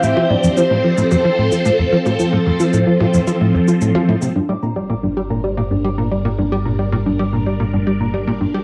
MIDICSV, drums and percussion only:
0, 0, Header, 1, 3, 480
1, 0, Start_track
1, 0, Tempo, 540541
1, 28, Time_signature, 4, 2, 24, 8
1, 7671, End_track
2, 0, Start_track
2, 0, Title_t, "Percussion blips"
2, 149, Note_on_c, 9, 63, 47
2, 238, Note_off_c, 9, 63, 0
2, 989, Note_on_c, 9, 63, 42
2, 1078, Note_off_c, 9, 63, 0
2, 1828, Note_on_c, 9, 63, 42
2, 1917, Note_off_c, 9, 63, 0
2, 2668, Note_on_c, 9, 63, 45
2, 2757, Note_off_c, 9, 63, 0
2, 3507, Note_on_c, 9, 63, 42
2, 3596, Note_off_c, 9, 63, 0
2, 7671, End_track
3, 0, Start_track
3, 0, Title_t, "Drums"
3, 29, Note_on_c, 9, 82, 53
3, 118, Note_off_c, 9, 82, 0
3, 389, Note_on_c, 9, 82, 61
3, 477, Note_off_c, 9, 82, 0
3, 508, Note_on_c, 9, 82, 51
3, 597, Note_off_c, 9, 82, 0
3, 868, Note_on_c, 9, 82, 63
3, 957, Note_off_c, 9, 82, 0
3, 989, Note_on_c, 9, 82, 48
3, 1078, Note_off_c, 9, 82, 0
3, 1348, Note_on_c, 9, 82, 60
3, 1437, Note_off_c, 9, 82, 0
3, 1468, Note_on_c, 9, 82, 50
3, 1557, Note_off_c, 9, 82, 0
3, 1828, Note_on_c, 9, 82, 59
3, 1917, Note_off_c, 9, 82, 0
3, 1948, Note_on_c, 9, 82, 53
3, 2037, Note_off_c, 9, 82, 0
3, 2308, Note_on_c, 9, 82, 62
3, 2397, Note_off_c, 9, 82, 0
3, 2428, Note_on_c, 9, 82, 52
3, 2517, Note_off_c, 9, 82, 0
3, 2788, Note_on_c, 9, 82, 69
3, 2876, Note_off_c, 9, 82, 0
3, 2907, Note_on_c, 9, 82, 49
3, 2996, Note_off_c, 9, 82, 0
3, 3268, Note_on_c, 9, 82, 61
3, 3356, Note_off_c, 9, 82, 0
3, 3387, Note_on_c, 9, 82, 51
3, 3476, Note_off_c, 9, 82, 0
3, 3747, Note_on_c, 9, 82, 58
3, 3836, Note_off_c, 9, 82, 0
3, 7671, End_track
0, 0, End_of_file